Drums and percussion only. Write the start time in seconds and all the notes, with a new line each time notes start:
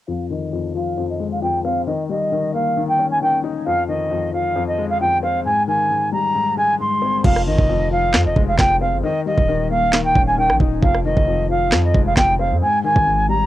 7.24 kick, crash
7.36 cross-stick
7.59 kick
8.14 snare, clap
8.36 kick
8.59 kick, snare, clap
9.38 kick
9.93 snare, clap
10.15 kick
10.50 cross-stick
10.60 kick
10.83 kick
10.95 cross-stick
11.17 kick
11.72 snare, clap
11.94 kick
12.17 kick, snare, clap
12.96 kick